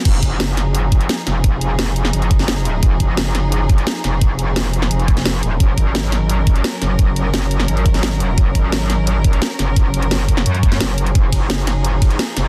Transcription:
<<
  \new Staff \with { instrumentName = "String section" } { \time 4/4 \key f \phrygian \tempo 4 = 173 <f ees' aes'>1~ | <f ees' aes'>1~ | <f ees' aes'>1~ | <f ees' aes'>1 |
<ges des' bes'>1~ | <ges des' bes'>1~ | <ges des' bes'>1~ | <ges des' bes'>1 |
<f ees' aes'>1 | }
  \new Staff \with { instrumentName = "Wobble bass" } { \clef bass \time 4/4 \key f \phrygian f,,8 ges,,2~ ges,,8 r8 f,,8~ | f,,2 ges,,2 | f,,8 ges,,2~ ges,,8 r8 f,,8~ | f,,2 f,,4. ees,,8 |
ges,,8 aes,,2~ aes,,8 r8 ges,,8~ | ges,,2 aes,,2 | ges,,8 aes,,2~ aes,,8 r8 ges,,8~ | ges,,2 ges,4 ges,,4 |
f,,8 ges,,2~ ges,,8 r8 f,,8 | }
  \new DrumStaff \with { instrumentName = "Drums" } \drummode { \time 4/4 <cymc hh bd>8 <hh bd>8 <hh sn>8 <hh sn>8 hh8 <hh bd>16 hh16 <hh sn>8 <hh sn>8 | <hh bd>8 hh8 <hh sn>8 hh16 sn16 hh16 hh16 <hh bd>16 <hh sn>16 <hh sn>8 hh8 | <hh bd>8 <hh bd>8 <hh sn>8 <hh sn>8 hh8 <hh bd>16 hh16 <hh sn>8 <hh sn>8 | <hh bd>8 hh8 <hh sn>8 hh16 sn16 hh16 hh16 <hh bd>16 <hh sn>16 <hh sn>8 hh8 |
<hh bd>8 <hh bd>8 <hh sn>8 <hh sn>8 hh8 <hh bd>16 hh16 <hh sn>8 <hh sn>8 | <hh bd>8 hh8 <hh sn>8 hh16 sn16 hh16 hh16 <hh bd>16 <hh sn>16 <hh sn>8 hh8 | <hh bd>8 <hh bd>8 <hh sn>8 <hh sn>8 hh8 <hh bd>16 hh16 <hh sn>8 <hh sn>8 | <hh bd>8 hh16 hh16 <hh sn>8 <hh bd>16 sn16 hh16 hh16 <hh bd>16 <hh sn>16 <hh sn>8 hh16 hh16 |
<hh bd>8 <hh bd cymr>8 <hh sn>8 <hh cymr sn>8 hh8 <hh bd cymr>16 hh16 <hh sn>8 <hh cymr sn>8 | }
>>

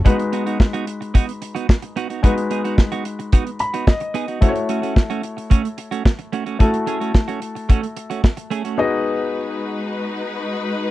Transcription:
<<
  \new Staff \with { instrumentName = "Grand piano" } { \time 4/4 \key gis \phrygian \tempo 4 = 110 << { r1 | r2 r8 b''8 dis''4 | r1 | r1 |
r1 | } \\ { <gis dis' fis' b'>1 | <gis dis' fis' b'>1 | <a e' fis' bis' cis''>1 | <a e' fis' a'>1 |
<b dis' fis' gis' dis''>1 | } >> }
  \new Staff \with { instrumentName = "String section" } { \time 4/4 \key gis \phrygian r1 | r1 | r1 | r1 |
<gis dis' fis' b'>1 | }
  \new Staff \with { instrumentName = "Clean electric guitar" } { \time 4/4 \key gis \phrygian <b dis' fis'>16 r16 <b dis' fis'>16 <b dis' fis'>16 r16 <b dis' fis'>16 r8 <b dis' fis'>16 r8 <b dis' fis'>16 r8 <b dis' fis'>16 <b dis' fis'>16 | <b dis' fis'>16 r16 <b dis' gis'>16 <b dis' fis'>16 r16 <b dis' fis'>16 r8 <b dis' fis'>16 r8 <b dis' fis'>16 r8 <b dis' gis'>16 <b dis' fis'>16 | <a cis' fis'>16 r16 <a cis' fis'>16 <a cis' fis'>16 r16 <a cis' fis'>16 r8 <a cis' fis'>16 r8 <a cis' fis'>16 r8 <a cis' fis'>16 <a cis' fis'>16 | <a cis' fis'>16 r16 <a cis' gis'>16 <a cis' fis'>16 r16 <a cis' fis'>16 r8 <a cis' fis'>16 r8 <a cis' fis'>16 r8 <a cis' gis'>16 <a cis' fis'>16 |
r1 | }
  \new DrumStaff \with { instrumentName = "Drums" } \drummode { \time 4/4 <hh bd>16 hh16 hh16 hh16 <bd sn>16 hh16 hh16 hh16 <hh bd>16 hh16 hh16 hh16 <bd sn>16 hh16 hh16 hh16 | <hh bd>16 hh16 hh16 hh16 <bd sn>16 hh16 hh16 hh16 <hh bd>16 hh16 hh16 hh16 <bd sn>16 hh16 hh16 hh16 | <hh bd>16 hh16 hh16 hh16 <bd sn>16 hh16 hh16 hh16 <hh bd>16 hh16 hh16 hh16 <bd sn>16 hh16 hh16 hh16 | <hh bd>16 hh16 hh16 hh16 <bd sn>16 hh16 hh16 hh16 <hh bd>16 hh16 hh16 hh16 <bd sn>16 hh16 hh16 hh16 |
r4 r4 r4 r4 | }
>>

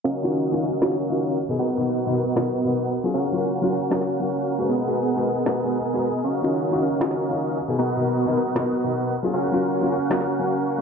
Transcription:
<<
  \new Staff \with { instrumentName = "Supersaw synth" } { \time 4/4 \key ees \minor \tempo 4 = 155 <des' ges' bes' ees'' f''>4. <des' ges' bes' ees'' f''>2 r8 | <b fis' ais' dis'' fis''>4. <b fis' ais' dis'' fis''>8 <b fis' ais' dis'' fis''>4. r8 | <des' ges' bes' f'' ges''>4. <des' ges' bes' f'' ges''>2~ <des' ges' bes' f'' ges''>8 | <ces' aes' bes' ees'' ges''>4. <ces' aes' bes' ees'' ges''>8 <ces' aes' bes' ees'' ges''>4 <ces' aes' bes' ees'' aes''>4 |
<des' ges' bes' ees'' f''>4. <des' ges' bes' ees'' f''>2 r8 | <b fis' ais' dis'' fis''>4. <b fis' ais' dis'' fis''>8 <b fis' ais' dis'' fis''>4. r8 | <des' ges' bes' f'' ges''>4. <des' ges' bes' f'' ges''>2~ <des' ges' bes' f'' ges''>8 | }
  \new Staff \with { instrumentName = "Felt piano" } { \time 4/4 \key ees \minor r8 <ees des' f' ges'>8. <ees des' f' ges'>16 r8 <ees des' f' ges'>16 r8 <ees des' f' ges'>8. r16 <b, b dis' aes'>16~ | <b, b dis' aes'>16 r16 <b, b dis' ais'>8. <b, b dis' ais'>16 r8 <b, b dis' ais'>16 r8 <b, b dis' ais'>8. r16 <ges des' f' aes'>16~ | <ges des' f' aes'>16 r16 <ges des' f' bes'>8. <ges des' f' bes'>16 r8 <ges des' f' bes'>16 r8 <ges des' bes'>4 <aes ges' bes' ces''>16~ | <aes ges' bes' ces''>16 r16 <aes ges' bes' ces''>8. <aes ges' bes' ces''>16 r8 <aes ges' bes' ces''>16 r16 <aes ges' bes' ces''>16 r8 <aes ges' bes' ces''>16 r8 |
r8 <ees des' f' ges'>8. <ees des' f' ges'>16 r8 <ees des' f' ges'>16 r8 <ees des' f' ges'>8. r16 <b, b dis' aes'>16~ | <b, b dis' aes'>16 r16 <b, b dis' ais'>8. <b, b dis' ais'>16 r8 <b, b dis' ais'>16 r8 <b, b dis' ais'>8. r16 <ges des' f' aes'>16~ | <ges des' f' aes'>16 r16 <ges des' f' bes'>8. <ges des' f' bes'>16 r8 <ges des' f' bes'>16 r8 <ges des' bes'>4 aes16 | }
  \new DrumStaff \with { instrumentName = "Drums" } \drummode { \time 4/4 r4 r4 sn16 sn8. r4 | r4 r4 sn4 r4 | r4 r4 sn16 sn8. r4 | r4 r4 sn4 r4 |
r4 r4 sn16 sn8. r4 | r4 r4 sn4 r4 | r4 r4 sn16 sn8. r4 | }
>>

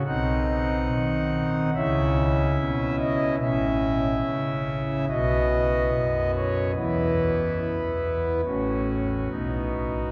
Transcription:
<<
  \new Staff \with { instrumentName = "Pipe organ" } { \time 4/4 \key b \mixolydian \tempo 4 = 71 << { fis''2 e''4. dis''8 | e''2 dis''4. cis''8 | b'2 fis'2 | } \\ { <c' dis'>2 <cis' e'>2 | <cis' e'>2 <b fis'>2 | <b e'>2 cis'4 <b dis'>4 | } >> }
  \new Staff \with { instrumentName = "Pipe organ" } { \clef bass \time 4/4 \key b \mixolydian <b,, b,>4 dis4 <cis, cis>4 b,4 | <a,, a,>4 cis4 <b,, b,>4 fis,4 | <e, e>4 e,4 <a,, a,>4 <b,, b,>4 | }
>>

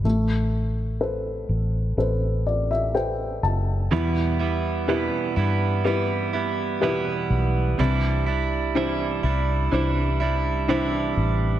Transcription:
<<
  \new Staff \with { instrumentName = "Upright piano" } { \time 4/4 \key e \minor \tempo 4 = 62 << { r2 r8 d''16 e''16 g''8 a''8 | r1 | r1 | } \\ { a4 <a' b' c''>4 <a' b' c''>4 <a' b' c''>4 | e4 <e' g' b'>4 <e' g' b'>4 <e' g' b'>4 | c4 <d' e' c''>4 <d' e' c''>4 <d' e' c''>4 | } >> }
  \new Staff \with { instrumentName = "Clean electric guitar" } { \clef bass \time 4/4 \key e \minor r1 | <e, b, e g b e'>8 <e g b e'>8 <e, b, e g b e'>8 <e g b e'>8 <e g b e'>8 <e g b e'>8 <e, b, e g b e'>4 | <c e g d' e'>8 <g d' e'>8 <c e g d' e'>8 <g d' e'>8 <e g d' e'>8 <g d' e'>8 <c e g d' e'>4 | }
  \new Staff \with { instrumentName = "Fingered electric bass" } { \clef bass \time 4/4 \key e \minor a,,4. a,,8 a,,4. fis,,8 | e,4~ e,16 r16 g,2 b,,8 | c,4. c,8 c,4. a,,8 | }
>>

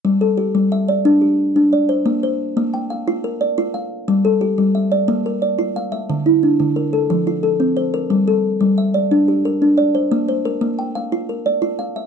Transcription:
<<
  \new Staff \with { instrumentName = "Kalimba" } { \time 12/8 \key g \dorian \tempo 4. = 119 r8 a'8 g'4 e''8 d''4 g'4. d''8 c''8~ | c''8 c''4. g''8 f''4 bes'8 d''4 f''4~ | f''8 a'8 g'4 e''8 d''4 bes'8 d''4 f''8 e''8~ | e''8 e'8 d'4 bes'8 a'4 f'8 a'4 c''8 bes'8~ |
bes'8 a'4. e''8 d''4 g'8 bes'4 d''8 c''8~ | c''8 c''8 bes'4 g''8 f''4 bes'8 d''4 f''8 e''8 | }
  \new Staff \with { instrumentName = "Kalimba" } { \time 12/8 \key g \dorian g4 r8 g4 r8 d'4 r8 d'4 r8 | bes4 r8 bes4 r8 f'4 r8 f'4 r8 | g4 r8 g4 r8 bes4 r8 f'4 r8 | d4 r8 d4 r8 f4 r8 c'4 r8 |
g4 r8 g4 r8 d'4 r8 d'4 r8 | bes4 r8 bes4 r8 f'4 r8 f'4 r8 | }
>>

